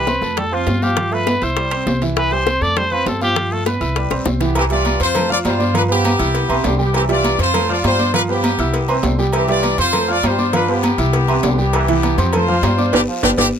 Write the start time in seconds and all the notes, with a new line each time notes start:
Already playing: C2 E3 B4
0.07 C4 C5 C6, high bongo, high conga, high timbale, low timbale, short guiro
0.21 F2 A3 A4 A5, high bongo, high conga, short guiro
0.37 G3 A4, high bongo, high conga, low conga, high timbale, long guiro
0.51 F3 C4 F4 C5 C6, high conga
0.67 G2, high bongo, low bongo, high conga, high timbale, low timbale, short guiro
0.81 F3 F4 G4 F5 F6, high bongo, high conga, short guiro
0.97 F3 F4 F5, high bongo, high timbale
1.11 A3 B4, high bongo, high conga
1.27 B3 B4 B5, high bongo, high conga, high timbale, low timbale, short guiro
1.42 C2 E4 C5 E5 E6, high bongo, high conga, high timbale, short guiro
1.56 G3, high bongo, high conga, high timbale, long guiro
1.71 C4 C5 C6, high conga, high timbale
1.86 C2, high bongo, low bongo, high conga, low timbale, short guiro
2.02 E3 E4 E5, high bongo, high conga, high timbale, short guiro
2.16 E3 B4, high bongo, high conga, high timbale, long guiro
2.31 G3 G4 C5 G5, high bongo, high conga
2.46 C4 C5 C6, high bongo, high conga, high timbale, low timbale, short guiro
2.61 F2 A3 A4 D5 A5, high bongo, high conga, short guiro
2.76 G3 C5, high bongo, high conga, low conga, high timbale, long guiro
2.91 F3 C4 B4 C5 C6, high conga, low conga
3.06 G2 A4, high bongo, low bongo, high conga, high timbale, low timbale, short guiro
3.20 F3 F4 G4 F5 F6, high bongo, high conga, short guiro
3.36 F3 F4 F5, high bongo, high timbale, long guiro
3.51 A3 A4, high bongo, high conga
3.66 B3 B4 B5, high bongo, high conga, high timbale, low timbale, short guiro
3.80 C2 E4 E5 E6, high bongo, high conga, high timbale, short guiro
3.96 G3, high bongo, high conga, high timbale, long guiro
4.11 B1 C4 C5 C6, high bongo, high conga, high timbale
4.26 C2, low bongo, high conga, low timbale, short guiro
4.40 E3 B3 E4 G4 E5, low bongo, high timbale, short guiro
4.55 E3 C4 G4, cowbell, high conga, low agogo, long guiro
4.70 G3 F4 G4 D5 E5, cowbell, high conga
4.85 cowbell, high conga, low timbale, low agogo, short guiro
5.00 F2 C4 F4 C5 C6, cowbell, high conga, low agogo, short guiro
5.15 A3 A4 A5, cowbell, high conga, low conga, low agogo, long guiro
5.29 F3 F4 D5 F5 F6, high conga, low conga
5.45 G2 G3 F4 C5, cowbell, high conga, low timbale, low agogo, short guiro
5.59 D4 D5 D6, high conga, short guiro
5.74 F3 D4 F4 B4 F5, cowbell, low agogo, long guiro
5.89 F3 B3 G4 B4 B5, high conga
6.04 cowbell, high conga, low timbale, low agogo, short guiro
6.19 C2 E4 E5 E6, cowbell, high conga, short guiro
6.34 cowbell, high conga, low agogo, long guiro
6.49 B1 C3 E3 E5 C6, high conga, low agogo
6.64 C2 D3, cowbell, high conga, low timbale, short guiro
6.78 G3 B3 G4 G5, high conga, short guiro
6.93 E3 C4 G4, cowbell, high conga, low agogo, long guiro
7.09 G3 F4 G4 D5 E5, cowbell, high conga
7.24 cowbell, high conga, low timbale, low agogo, short guiro
7.38 F2 C4 F4 C5 C6, cowbell, high conga, low agogo, short guiro
7.54 A3 A4 A5, cowbell, high conga, low conga, low agogo, long guiro
7.69 F3 F4 D5 F5 F6, high conga, low conga
7.84 G2 G3 F4 C5, cowbell, high conga, low timbale, low agogo, short guiro
7.99 D4 D5 D6, high conga, short guiro
8.14 F3 D4 F4 B4 F5, cowbell, low agogo, long guiro
8.28 F3 B3 G4 B4 B5, high conga
8.44 cowbell, high conga, low timbale, low agogo, short guiro
8.58 C2 E4 E5 E6, cowbell, high conga, short guiro
8.74 cowbell, high conga, low agogo, long guiro
8.88 E3 C4 C5 C6, high conga, low agogo
9.03 C2 D3, cowbell, high conga, low timbale, short guiro
9.19 G3 B3 G4 G5, high conga, short guiro
9.33 E3 C4 G4, cowbell, high conga, low agogo, long guiro
9.48 G3 F4 G4 D5 E5, cowbell, high conga
9.63 cowbell, high conga, low timbale, low agogo, short guiro
9.78 F2 C4 F4 C5 C6, cowbell, high conga, low agogo, short guiro
9.93 A3 A4 A5, cowbell, high conga, low conga, low agogo, long guiro
10.08 F3 F4 D5 F5 F6, high conga
10.23 G2 G3 F4 C5, cowbell, high conga, low timbale, low agogo, short guiro
10.38 D4 D5 D6, high conga, short guiro
10.53 F3 D4 F4 B4 F5, cowbell, low agogo, long guiro
10.68 F3 B3 G4 B4 B5, high conga
10.83 cowbell, high conga, low timbale, low agogo, short guiro
10.98 C2 E4 E5 E6, cowbell, high conga, short guiro
11.13 cowbell, high conga, low agogo, long guiro
11.28 C3 E3 E5 C6, high conga, low agogo
11.43 C2 D3, cowbell, high conga, low timbale, short guiro
11.58 G3 B3 G4 G5, high conga, short guiro
11.73 E3, cowbell, high conga, low agogo, long guiro
11.88 E3 B3 E4 G4 E5, cowbell, high conga
12.03 cowbell, high conga, low timbale, low agogo, short guiro
12.17 F2 C4 C5 C6, cowbell, high conga, low agogo, short guiro
12.33 A3 F4 A4 C5 A5, cowbell, high conga, low conga, low agogo, long guiro
12.48 F3 F4 F5 F6, high conga, low conga
12.62 G2 G3, cowbell, high conga, low timbale, low agogo, short guiro
12.78 D4 D5 D6, high conga, short guiro
12.92 G1 D4 F4 G4 B4 D5, cowbell, high conga, high timbale, long guiro
13.07 F3
13.23 G1 D4 F4 G4 B4 D5, cowbell, high conga, high timbale, long guiro
13.37 G1 D4 F4 G4 B4 D5, cowbell, high conga, high timbale, long guiro